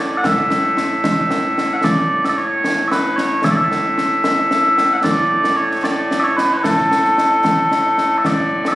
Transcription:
Already playing: A2 A3
0.00 D5
0.17 F#5
0.24 E5, concert bass drum, snare
0.50 snare
0.77 snare
1.04 concert bass drum, snare
1.31 snare
1.58 snare
1.73 E5 F#5
1.84 D5, concert bass drum, snare
2.24 E5, snare
2.30 D5
2.37 C#5
2.64 snare
2.88 B4 E5, snare
3.16 C#5, snare
3.44 E5, concert bass drum, snare
3.51 D5
3.57 E5
3.72 snare
3.98 snare
4.24 snare
4.51 snare
4.78 snare
4.93 F#5
4.97 E5
5.04 D5, concert bass drum, snare
5.44 snare
5.56 C#5
5.71 snare
5.84 D5, snare
6.11 snare
6.20 C#5 E5
6.37 B4, snare
6.54 B4 C#5
6.64 A4, concert bass drum, snare
6.78 snare
6.91 snare
7.05 snare
7.18 snare
7.45 concert bass drum, snare
7.71 snare
7.98 snare
8.18 E5
8.25 D5, concert bass drum, snare
8.65 E5, snare

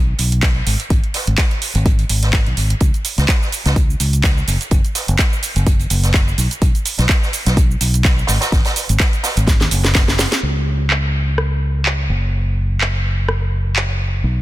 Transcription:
Already playing: B1
0.18 B1, closed hi-hat, open hi-hat
0.32 closed hi-hat
0.43 kick, snare, clap, closed hi-hat
0.67 G#1, closed hi-hat, open hi-hat
0.80 closed hi-hat
0.90 G#1, kick, closed hi-hat
1.04 closed hi-hat
1.14 snare, closed hi-hat, open hi-hat
1.27 G#1, closed hi-hat
1.38 kick, snare, clap, closed hi-hat
1.51 closed hi-hat
1.62 closed hi-hat, open hi-hat
1.75 G#1, closed hi-hat
1.86 kick, closed hi-hat
1.99 closed hi-hat
2.09 G#1, closed hi-hat, open hi-hat
2.23 snare, closed hi-hat
2.33 kick, snare, clap, closed hi-hat
2.46 B1, closed hi-hat
2.57 G#1, closed hi-hat, open hi-hat
2.70 closed hi-hat
2.80 C#2, kick, closed hi-hat, cabasa
2.94 closed hi-hat, cabasa
3.05 closed hi-hat, open hi-hat, cabasa
3.18 C#2, snare, closed hi-hat, cabasa
3.29 kick, snare, clap, closed hi-hat, cabasa
3.42 snare, cabasa
3.52 closed hi-hat, open hi-hat, cabasa
3.66 C#2, snare, closed hi-hat, cabasa
3.76 kick, closed hi-hat, cabasa
3.90 cabasa
4.00 C#2, closed hi-hat, open hi-hat, cabasa
4.13 closed hi-hat, cabasa
4.24 kick, snare, clap, closed hi-hat, cabasa
4.38 cabasa
4.48 F#1, closed hi-hat, open hi-hat, cabasa
4.61 closed hi-hat, cabasa
4.71 F#1, kick, closed hi-hat, cabasa
4.85 closed hi-hat, cabasa
4.95 snare, closed hi-hat, open hi-hat, cabasa
5.08 F#1, closed hi-hat, cabasa
5.19 kick, snare, clap, closed hi-hat, cabasa
5.33 cabasa
5.43 closed hi-hat, open hi-hat, cabasa
5.56 F#1, closed hi-hat, cabasa
5.66 kick, closed hi-hat, cabasa
5.79 closed hi-hat, cabasa
5.90 F#1, closed hi-hat, open hi-hat, cabasa
6.03 snare, closed hi-hat, cabasa
6.14 kick, snare, clap, closed hi-hat, cabasa
6.28 cabasa
6.38 B1, closed hi-hat, open hi-hat, cabasa
6.51 closed hi-hat, cabasa
6.62 B1, kick, closed hi-hat, cabasa
6.75 closed hi-hat, cabasa
6.85 closed hi-hat, open hi-hat, cabasa
6.98 B1, snare, closed hi-hat, cabasa
7.09 kick, snare, clap, closed hi-hat, cabasa
7.22 snare, cabasa
7.33 closed hi-hat, open hi-hat, cabasa
7.46 B1, snare, closed hi-hat, cabasa
7.57 kick, closed hi-hat, cabasa
7.71 cabasa
7.81 B1, closed hi-hat, open hi-hat, cabasa
7.94 closed hi-hat, cabasa
8.04 kick, snare, clap, closed hi-hat, cabasa
8.19 cabasa
8.27 G#1, snare, closed hi-hat, open hi-hat, cabasa
8.41 snare, closed hi-hat, cabasa
8.52 G#1, kick, snare, closed hi-hat, cabasa
8.64 snare, closed hi-hat, cabasa
8.76 snare, closed hi-hat, open hi-hat, cabasa
8.89 G#1, closed hi-hat, cabasa
8.99 kick, snare, clap, closed hi-hat, cabasa
9.13 closed hi-hat, cabasa
9.23 snare, closed hi-hat, open hi-hat, cabasa
9.37 G#1, closed hi-hat, cabasa
9.47 kick, snare, closed hi-hat, cabasa
9.61 D#2, snare, closed hi-hat, cabasa
9.71 F#1, closed hi-hat, open hi-hat, cabasa
9.84 snare, closed hi-hat, cabasa
9.95 kick, snare, clap, closed hi-hat, cabasa
10.08 snare, cabasa
10.18 snare, closed hi-hat, open hi-hat, cabasa
10.32 snare, closed hi-hat, cabasa
10.43 C#2
10.90 clap
11.38 cross-stick
11.86 clap
12.09 F#1
12.81 clap
13.29 cross-stick
13.76 clap
14.24 B1

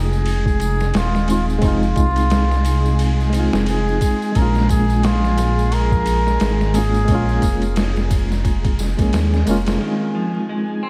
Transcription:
Already playing: F1 G#3 C4 D#4 F4 G#4
0.13 tambourine
0.26 ride, tambourine
0.46 kick, tambourine
0.60 ride, tambourine
0.80 snare, tambourine
0.94 D#1 F4, snare, ride, tambourine
1.15 snare, tambourine
1.27 G#3 C4 D#4 F4, ride, tambourine
1.32 F4
1.50 tambourine
1.58 G#3 C4, kick, ride
1.63 F1 D#4 F4, tambourine
1.68 F4
1.83 tambourine
1.96 C2, kick, ride, tambourine
2.16 ride, tambourine
2.30 snare, ride, tambourine
2.51 snare, tambourine
2.65 ride, tambourine
2.86 tambourine
2.99 ride, tambourine
3.20 tambourine
3.30 G#3 C4, ride
3.34 D#4, tambourine
3.39 F4
3.53 F1, snare, tambourine
3.66 G#4, ride, tambourine
3.89 tambourine
4.01 kick, ride, tambourine
4.22 tambourine
4.32 A#1 G#3 A#3 A#4, kick, ride, tambourine
4.38 C#4 F4
4.55 snare, tambourine
4.69 G#4, kick, ride, tambourine
4.90 tambourine
5.03 F4, snare, ride, tambourine
5.24 snare, tambourine
5.38 snare, ride, tambourine
5.59 tambourine
5.72 A#4, ride, tambourine
5.91 kick, tambourine
6.06 ride, tambourine
6.27 snare, tambourine
6.40 G#1, snare, ride, tambourine
6.61 snare, tambourine
6.73 G#3 A#3 C#4 G#4, ride, tambourine
6.78 F4
6.94 tambourine
7.05 A#1 G#3 A#3, kick, ride, tambourine
7.12 C#4 F4
7.29 tambourine
7.42 F1, kick, ride, tambourine
7.62 ride, tambourine
7.76 snare, ride, tambourine
7.96 snare, tambourine
8.10 kick, ride, tambourine
8.32 snare, tambourine
8.45 kick, ride, tambourine
8.64 kick, ride, tambourine
8.79 snare, tambourine
8.97 A#1 G#3 A#3 C#4, kick, ride, tambourine
9.02 G#4
9.13 D#2, snare, ride, tambourine
9.34 snare, tambourine
9.46 F1 G#3 A#3 C#4, ride, tambourine
9.51 F4
9.66 snare, ride, tambourine
9.78 D#3 G#3 C4 G#5
9.85 D#4 F4
10.15 F3
10.49 G#3
10.83 C4

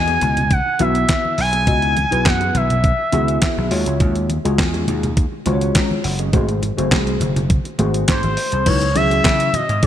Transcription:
Already playing: E2 B3 E4 F#4 D#5 G#5
0.07 B3 E4 G#4, closed hi-hat
0.21 C#2, muted clean electric guitar stroke, closed hi-hat, muted conga, high conga, low conga
0.37 muted clean electric guitar stroke, closed hi-hat, low conga
0.51 F#5, muted clean electric guitar stroke, kick, closed hi-hat, high conga
0.66 muted clean electric guitar stroke
0.79 B1 B3 E4 F#4 E5, closed hi-hat, high conga
0.95 B3 E4 F#4, closed hi-hat
1.09 F#4, kick, snare, clap, closed hi-hat
1.24 muted clean electric guitar stroke, high conga
1.38 B1 G#5, muted clean electric guitar stroke, open hi-hat, muted conga
1.53 B3 E4 G#4, closed hi-hat
1.67 C#2 B3 E4 F#4 D#5, kick, closed hi-hat, low conga
1.82 muted clean electric guitar stroke, closed hi-hat
1.96 muted clean electric guitar stroke, closed hi-hat, muted conga, high conga
2.11 B1 B3 E4 F#4 G#4 B4, closed hi-hat
2.25 F#2 F#5, muted clean electric guitar stroke, kick, snare, clap, closed hi-hat
2.40 B3 E4 G#4, closed hi-hat
2.54 B1 E5, muted clean electric guitar stroke, closed hi-hat, muted conga, high conga, low conga
2.70 muted clean electric guitar stroke, closed hi-hat, low conga
2.83 muted clean electric guitar stroke, kick, closed hi-hat, high conga
2.99 muted clean electric guitar stroke
3.12 C#2 B3 E4 F#4 G#4, closed hi-hat, muted conga, high conga
3.27 B3 E4 F#4, closed hi-hat
3.41 B3 E4 F#4, kick, snare, clap, closed hi-hat
3.57 B1, muted clean electric guitar stroke, high conga
3.71 D#2 G#3 F4 F#4 C#5, open hi-hat, muted conga
3.86 C#2 G#3 C#4 G#4, closed hi-hat
4.00 D#2 G#3 C#4 F#4, kick, closed hi-hat, muted conga, low conga
4.15 muted clean electric guitar stroke, closed hi-hat
4.29 muted clean electric guitar stroke, closed hi-hat, high conga
4.45 C#2 G#3 C#4 F4 F#4 G#4, closed hi-hat
4.58 E2, kick, snare, clap, closed hi-hat
4.74 G#3 C#4 G#4, closed hi-hat
4.88 D#2, muted clean electric guitar stroke, closed hi-hat, muted conga, high conga, low conga
5.03 muted clean electric guitar stroke, closed hi-hat, low conga
5.17 muted clean electric guitar stroke, kick, closed hi-hat, high conga
5.32 muted clean electric guitar stroke
5.46 C#2 G#3 C#4 F4 F#4 C5, closed hi-hat, muted conga, high conga
5.53 C#5
5.61 G#3 C#4 F#4, closed hi-hat
5.75 G#3 C#4 F#4 A#5, kick, snare, clap, closed hi-hat
5.90 muted clean electric guitar stroke, high conga
6.04 F#1 F#5, muted clean electric guitar stroke, open hi-hat, muted conga
6.19 G#3 C#4 G#4 D#5, closed hi-hat
6.33 G#1 A3 C4 F#4 G#4 C5, kick, closed hi-hat, low conga
6.48 muted clean electric guitar stroke, closed hi-hat
6.62 muted clean electric guitar stroke, closed hi-hat, high conga
6.77 F#1 A3 C4 F#4 G#4 C5, closed hi-hat
6.91 C2, kick, snare, clap, closed hi-hat
7.07 A3 C4 G#4, closed hi-hat
7.20 F#1, muted clean electric guitar stroke, closed hi-hat, muted conga, high conga, low conga
7.36 muted clean electric guitar stroke, closed hi-hat, low conga
7.49 muted clean electric guitar stroke, kick, closed hi-hat, muted conga, high conga
7.65 muted clean electric guitar stroke, closed hi-hat
7.79 G#1 A3 C4 F#4 G#4 C5, closed hi-hat, muted conga, high conga
7.94 A3 C4 F#4, closed hi-hat
8.08 G#2 A3 C4 F#4 C5, kick, snare, clap, closed hi-hat
8.23 G#1, muted clean electric guitar stroke, closed hi-hat, high conga
8.37 muted clean electric guitar stroke, open hi-hat
8.52 C2 A3 C4 G#4, closed hi-hat
8.66 C#2 F#3 B3 D#4 E4 F#4 B4 C#5, kick, closed hi-hat, crash, muted conga, low conga
8.81 muted clean electric guitar stroke, closed hi-hat
8.95 C#2 F#3 C#4 E4 G#4 E5, muted clean electric guitar stroke, closed hi-hat, muted conga, high conga
9.11 B3 E4 F#4, closed hi-hat
9.24 C#3, kick, snare, clap, closed hi-hat
9.40 muted clean electric guitar stroke, closed hi-hat
9.54 B3 E4 F#4 D#5, closed hi-hat, high conga, low conga
9.69 G#2, muted clean electric guitar stroke, closed hi-hat
9.83 F#3 D#4 E4 G#4 C#5, muted clean electric guitar stroke, kick, closed hi-hat, muted conga

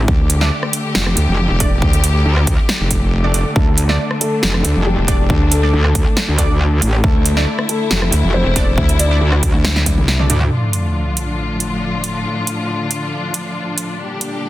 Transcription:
Already playing: D3 A3
0.08 D2 G4, kick
0.30 closed hi-hat
0.41 A3 D4 D5, snare
0.63 cross-stick
0.73 closed hi-hat
0.95 F1, snare
1.06 cross-stick
1.17 D2, closed hi-hat
1.28 F1
1.50 E1
1.60 A3 D4 D5, kick, closed hi-hat
1.82 D2, kick
1.93 closed hi-hat
2.04 closed hi-hat
2.26 D2
2.37 cross-stick
2.47 kick, closed hi-hat
2.69 cross-stick, snare
2.80 F1
2.91 kick, closed hi-hat
3.24 A3 D4 D5
3.34 A3 D4 D5, closed hi-hat
3.56 D2 A3 D4 A4, kick
3.78 closed hi-hat
3.89 A3 D4 D5, snare
4.11 cross-stick
4.21 A3 A4, closed hi-hat
4.43 F1, snare
4.54 cross-stick
4.65 D2, closed hi-hat
4.76 F1
4.86 G3 G4
4.98 E1
5.08 A3 D4 D5, kick, closed hi-hat
5.30 D2, kick
5.52 A3 A4, closed hi-hat
5.63 A3 D4 D5
5.73 D2
5.85 cross-stick
5.95 kick, closed hi-hat
6.17 cross-stick, snare
6.28 D2
6.38 A3 D4 D5, kick, closed hi-hat
6.50 D2
6.82 A1, closed hi-hat
7.04 D2 A3 E4 A4, kick
7.26 closed hi-hat
7.37 A3 D4 D5, snare
7.59 cross-stick
7.69 A3 A4, closed hi-hat
7.91 F1, snare
8.02 cross-stick
8.12 D2, closed hi-hat
8.24 F1
8.34 C4 C5
8.46 E1
8.56 A3 D4 D5, kick, closed hi-hat
8.78 D2, kick
8.89 closed hi-hat
8.99 D4 D5, closed hi-hat
9.11 A3 D4 D5
9.21 D2
9.32 cross-stick
9.43 kick, closed hi-hat
9.54 D2
9.65 cross-stick, snare, high tom
9.76 snare
9.86 kick, closed hi-hat, high tom
9.98 C2, mid tom
10.08 snare
10.19 A3 D4 D5, mid tom
10.30 D2 A3 D4 D5, closed hi-hat, mid tom
10.41 mid tom
10.51 A2 D3 F3 D4 F4, sub drop
10.73 closed hi-hat
11.17 closed hi-hat
11.60 closed hi-hat
12.04 closed hi-hat
12.47 closed hi-hat
12.91 closed hi-hat
13.34 closed hi-hat
13.78 closed hi-hat
13.99 A#2 D3 G3 G4
14.21 closed hi-hat

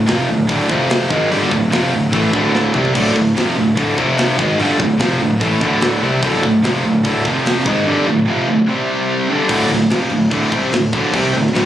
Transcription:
0.06 F1 F2 C3 F3, snare, open hi-hat
0.28 D1 D2 A2
0.49 D1 D2 A2 D3, kick, open hi-hat
0.70 F1 F2 C3 F3, kick
0.90 snare, open hi-hat
1.10 G#1 G#2 D#3 G#3, kick
1.31 G1 G2 D3 G3, open hi-hat
1.43 snare
1.51 D1 D2 A2, kick
1.72 F1 F2 C3 F3, snare, open hi-hat
1.91 D1 D2 A2
2.12 A1 A2 E3 A3, kick, open hi-hat
2.33 D1 D2 A2 D3, kick
2.55 snare
2.73 C2 C3 G3 C4, mid tom
2.85 floor tom
2.95 D1 D2 A2 D3, kick, crash
3.07 snare
3.16 D1 D2 A2, kick
3.36 F1 F2 C3 F3, snare, open hi-hat
3.57 D1 D2 A2
3.77 D1 D2 A2 D3, kick, open hi-hat
3.98 F1 F2 C3 F3, kick
4.18 snare, open hi-hat
4.38 G#1 G#2 D#3 G#3, kick
4.59 G1 G2 D3 G3, open hi-hat
4.79 D1 D2 A2, kick
4.99 F1 F2 C3 F3, snare, open hi-hat
5.20 D1 D2 A2
5.40 A1 A2 E3 A3, kick, open hi-hat
5.61 D1 D2 A2 D3, kick
5.81 snare, open hi-hat
6.02 C2 C3 G3 C4
6.22 D1 D2 A2 D3, kick, open hi-hat
6.34 snare
6.43 D1 D2 A2, kick
6.62 F1 F2 C3 F3, snare, open hi-hat
6.82 D1 D2 A2
7.04 D1 D2 A2 D3, kick, open hi-hat
7.25 F1 F2 C3 F3, kick, snare
7.46 snare, open hi-hat
7.65 G#1 G#2 D#3 G#3, kick
7.88 G2 D3 G3
8.07 D2 A2
8.28 F2 C3 F3
8.48 D2 A2
8.69 C3 G3 C4
9.29 G2 D3 G3
9.49 D1 D2 A2 D3, kick, crash
9.69 D1 D2 A2, crash
9.81 snare
9.89 F1 F2 C3 F3, snare, crash
10.09 D1 D2 A2, crash
10.30 D1 D2 A2 D3, kick, crash
10.52 C2 C3 G3 C4, kick, crash
10.71 D1 D2 A2, snare, crash
10.93 D1 D2 A2 D3, kick, crash
11.13 C2 C3 G3 C4, kick, crash
11.33 D1 D2 A2, crash
11.47 snare
11.53 D1 D2 A2 D3, snare, crash

